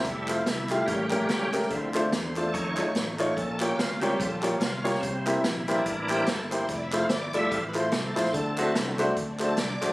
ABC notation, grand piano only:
X:1
M:4/4
L:1/8
Q:"Swing" 1/4=145
K:F
V:1 name="Grand piano"
z [A,EFc] z [A,EFG] z [A,^CGB] z [A,CGB] | z [A,DFc] z [A,DFc] z [A,_EF^c] z [A,EFc] | z [B,FG_d] z [B,FGd] z [B,FGd] z [B,FGd] | z [B,EGc] z [B,EGc] z [B,EGc] z [B,EGc] |
z [A,EFc] z [A,EFd] z [A,EFc] z [A,EFc] | z [A,D^Fc] z [A,DFc] z [A,DFc] z [A,DFc] |]
V:2 name="Grand piano" clef=bass
z4 A,,3 z | D,3 z4 z | B,,3 z4 z | C,3 z4 z |
z8 | D,3 z4 z |]